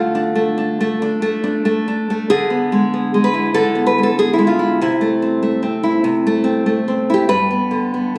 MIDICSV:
0, 0, Header, 1, 2, 480
1, 0, Start_track
1, 0, Key_signature, 0, "minor"
1, 0, Tempo, 647948
1, 1700, Tempo, 628931
1, 1701, Time_signature, 4, 2, 24, 8
1, 6192, End_track
2, 0, Start_track
2, 0, Title_t, "Nylon-string guitar"
2, 0, Program_c, 0, 24
2, 0, Note_on_c, 0, 50, 80
2, 0, Note_on_c, 0, 57, 64
2, 0, Note_on_c, 0, 65, 92
2, 110, Note_on_c, 0, 62, 67
2, 254, Note_off_c, 0, 57, 0
2, 263, Note_on_c, 0, 57, 61
2, 418, Note_off_c, 0, 62, 0
2, 427, Note_on_c, 0, 62, 63
2, 588, Note_off_c, 0, 57, 0
2, 596, Note_on_c, 0, 57, 70
2, 720, Note_off_c, 0, 50, 0
2, 746, Note_off_c, 0, 62, 0
2, 755, Note_on_c, 0, 62, 65
2, 895, Note_off_c, 0, 57, 0
2, 904, Note_on_c, 0, 57, 71
2, 1055, Note_off_c, 0, 62, 0
2, 1064, Note_on_c, 0, 62, 64
2, 1215, Note_off_c, 0, 57, 0
2, 1223, Note_on_c, 0, 57, 62
2, 1382, Note_off_c, 0, 62, 0
2, 1391, Note_on_c, 0, 62, 66
2, 1429, Note_off_c, 0, 65, 0
2, 1548, Note_off_c, 0, 57, 0
2, 1557, Note_on_c, 0, 57, 61
2, 1703, Note_on_c, 0, 68, 102
2, 1708, Note_off_c, 0, 62, 0
2, 1708, Note_on_c, 0, 50, 87
2, 1710, Note_off_c, 0, 57, 0
2, 1858, Note_on_c, 0, 59, 60
2, 2026, Note_on_c, 0, 56, 64
2, 2180, Note_off_c, 0, 59, 0
2, 2189, Note_on_c, 0, 59, 59
2, 2337, Note_off_c, 0, 56, 0
2, 2346, Note_on_c, 0, 56, 64
2, 2387, Note_off_c, 0, 68, 0
2, 2421, Note_on_c, 0, 71, 103
2, 2496, Note_on_c, 0, 64, 73
2, 2630, Note_off_c, 0, 50, 0
2, 2648, Note_off_c, 0, 71, 0
2, 2654, Note_on_c, 0, 50, 77
2, 2654, Note_on_c, 0, 69, 105
2, 2803, Note_off_c, 0, 59, 0
2, 2812, Note_on_c, 0, 59, 64
2, 2888, Note_off_c, 0, 69, 0
2, 2898, Note_on_c, 0, 71, 93
2, 2979, Note_off_c, 0, 56, 0
2, 2988, Note_on_c, 0, 56, 59
2, 3021, Note_off_c, 0, 71, 0
2, 3026, Note_on_c, 0, 69, 100
2, 3133, Note_off_c, 0, 59, 0
2, 3142, Note_off_c, 0, 69, 0
2, 3142, Note_on_c, 0, 59, 63
2, 3145, Note_on_c, 0, 68, 101
2, 3224, Note_off_c, 0, 64, 0
2, 3253, Note_off_c, 0, 68, 0
2, 3257, Note_on_c, 0, 64, 87
2, 3286, Note_off_c, 0, 56, 0
2, 3295, Note_on_c, 0, 56, 71
2, 3360, Note_on_c, 0, 65, 90
2, 3379, Note_off_c, 0, 64, 0
2, 3452, Note_on_c, 0, 64, 62
2, 3591, Note_off_c, 0, 50, 0
2, 3599, Note_off_c, 0, 65, 0
2, 3616, Note_off_c, 0, 64, 0
2, 3617, Note_off_c, 0, 56, 0
2, 3620, Note_off_c, 0, 59, 0
2, 3623, Note_on_c, 0, 48, 84
2, 3629, Note_on_c, 0, 64, 85
2, 3773, Note_on_c, 0, 57, 66
2, 3935, Note_on_c, 0, 60, 60
2, 4080, Note_off_c, 0, 57, 0
2, 4089, Note_on_c, 0, 57, 55
2, 4233, Note_off_c, 0, 60, 0
2, 4242, Note_on_c, 0, 60, 63
2, 4392, Note_off_c, 0, 64, 0
2, 4401, Note_on_c, 0, 64, 64
2, 4539, Note_off_c, 0, 48, 0
2, 4558, Note_on_c, 0, 48, 66
2, 4721, Note_off_c, 0, 57, 0
2, 4730, Note_on_c, 0, 57, 67
2, 4853, Note_off_c, 0, 60, 0
2, 4863, Note_on_c, 0, 60, 63
2, 5023, Note_off_c, 0, 57, 0
2, 5032, Note_on_c, 0, 57, 58
2, 5122, Note_off_c, 0, 64, 0
2, 5189, Note_off_c, 0, 60, 0
2, 5198, Note_on_c, 0, 60, 59
2, 5365, Note_on_c, 0, 64, 62
2, 5396, Note_on_c, 0, 67, 87
2, 5495, Note_off_c, 0, 48, 0
2, 5508, Note_off_c, 0, 64, 0
2, 5510, Note_on_c, 0, 43, 83
2, 5511, Note_on_c, 0, 71, 106
2, 5522, Note_off_c, 0, 57, 0
2, 5523, Note_off_c, 0, 67, 0
2, 5525, Note_off_c, 0, 60, 0
2, 5677, Note_on_c, 0, 59, 67
2, 5832, Note_on_c, 0, 50, 62
2, 5998, Note_off_c, 0, 59, 0
2, 6007, Note_on_c, 0, 59, 55
2, 6164, Note_off_c, 0, 50, 0
2, 6192, Note_off_c, 0, 43, 0
2, 6192, Note_off_c, 0, 59, 0
2, 6192, Note_off_c, 0, 71, 0
2, 6192, End_track
0, 0, End_of_file